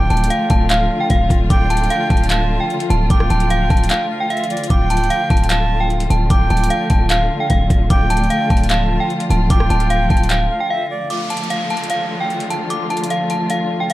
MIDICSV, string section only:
0, 0, Header, 1, 2, 480
1, 0, Start_track
1, 0, Key_signature, -1, "minor"
1, 0, Tempo, 400000
1, 1802, Time_signature, 4, 2, 24, 8
1, 16716, End_track
2, 0, Start_track
2, 0, Title_t, "String section"
2, 0, Program_c, 0, 48
2, 0, Note_on_c, 0, 50, 80
2, 0, Note_on_c, 0, 53, 74
2, 0, Note_on_c, 0, 57, 74
2, 0, Note_on_c, 0, 65, 91
2, 5595, Note_off_c, 0, 50, 0
2, 5595, Note_off_c, 0, 57, 0
2, 5642, Note_on_c, 0, 50, 80
2, 5642, Note_on_c, 0, 57, 74
2, 9435, Note_off_c, 0, 53, 0
2, 9435, Note_off_c, 0, 65, 0
2, 9483, Note_on_c, 0, 53, 74
2, 9483, Note_on_c, 0, 65, 92
2, 13274, Note_off_c, 0, 50, 0
2, 13274, Note_off_c, 0, 57, 0
2, 13284, Note_off_c, 0, 53, 0
2, 13284, Note_off_c, 0, 65, 0
2, 13324, Note_on_c, 0, 50, 73
2, 13324, Note_on_c, 0, 53, 69
2, 13324, Note_on_c, 0, 57, 71
2, 13324, Note_on_c, 0, 65, 82
2, 16716, Note_off_c, 0, 50, 0
2, 16716, Note_off_c, 0, 53, 0
2, 16716, Note_off_c, 0, 57, 0
2, 16716, Note_off_c, 0, 65, 0
2, 16716, End_track
0, 0, End_of_file